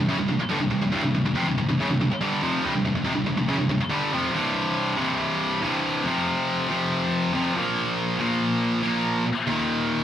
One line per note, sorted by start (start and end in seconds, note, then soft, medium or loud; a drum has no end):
0.08 0.18 F#2 medium
0.08 0.18 C#3 loud
0.19 0.27 C2 medium
0.19 0.28 G2 medium
0.29 0.39 C2 medium
0.29 0.39 G2 medium
0.40 muted distorted electric guitar stroke medium
0.50 0.60 G2 loud
0.50 0.60 D3 loud
0.61 0.70 C2 medium
0.61 0.70 G2 medium
0.71 0.81 C2 medium
0.71 0.81 G2 medium
0.82 0.91 C2 medium
0.82 0.92 G2 medium
0.92 1.02 C2 loud
0.92 1.03 G2 loud
1.03 1.13 C2 medium
1.03 1.13 G2 medium
1.14 1.24 C2 medium
1.14 1.25 G2 medium
1.25 1.35 C2 medium
1.25 1.36 G2 medium
1.35 1.45 F2 medium
1.35 1.46 C3 medium
1.48 1.57 C2 medium
1.48 1.57 G2 medium
1.58 1.68 C2 medium
1.58 1.68 G2 medium
1.69 1.79 C2 medium
1.69 1.79 G2 medium
1.80 1.89 F#2 medium
1.80 1.89 C#3 loud
1.90 2.00 C2 medium
1.90 2.00 G2 medium
2.01 2.10 C2 medium
2.01 2.11 G2 medium
2.11 muted distorted electric guitar stroke medium
2.21 2.41 G2 loud
2.21 2.42 D3 loud
2.21 2.42 G3 loud
2.42 2.63 F2 medium
2.42 2.63 C3 loud
2.42 2.63 F3 loud
2.63 2.73 C2 loud
2.63 2.74 G2 loud
2.75 2.84 C2 medium
2.75 2.85 G2 medium
2.85 2.94 C2 medium
2.85 2.94 G2 medium
2.95 3.04 C2 medium
2.95 3.05 G2 medium
3.05 3.14 F2 medium
3.05 3.14 C3 medium
3.15 3.25 C2 medium
3.15 3.26 G2 medium
3.26 3.36 C2 medium
3.26 3.36 G2 medium
3.37 3.48 C2 medium
3.37 3.48 G2 medium
3.48 3.59 F#2 medium
3.48 3.58 C#3 loud
3.59 3.68 C2 medium
3.59 3.69 G2 medium
3.69 3.80 C2 medium
3.69 3.81 G2 medium
3.81 muted distorted electric guitar stroke medium
3.90 4.11 G2 loud
3.90 4.12 D3 medium
3.90 4.12 G3 medium
4.12 4.32 F2 medium
4.12 4.34 C3 loud
4.12 4.34 F3 loud
4.33 4.96 C2 medium
4.33 4.97 G2 loud
4.33 4.96 C3 loud
4.97 5.59 C2 medium
4.97 5.61 G2 medium
4.97 5.60 C3 loud
5.61 6.03 C2 medium
5.61 6.04 G2 medium
5.65 6.05 C3 medium
6.04 6.67 F2 loud
6.04 6.68 C3 loud
6.04 6.68 F3 loud
6.69 7.32 F2 medium
6.69 7.33 C3 medium
6.69 7.32 F3 loud
7.33 7.53 F2 medium
7.33 7.54 C3 medium
7.33 7.55 F3 medium
7.54 8.17 A#2 loud
7.54 8.18 F3 loud
7.58 8.22 A#3 loud
8.19 8.81 A#2 medium
8.19 8.82 F3 medium
8.19 8.82 A#3 medium
8.83 9.26 A#2 medium
8.83 9.25 F3 medium
8.83 9.24 A#3 medium
9.47 10.04 D#2 medium
9.47 10.04 A#2 medium
9.47 10.04 D#3 loud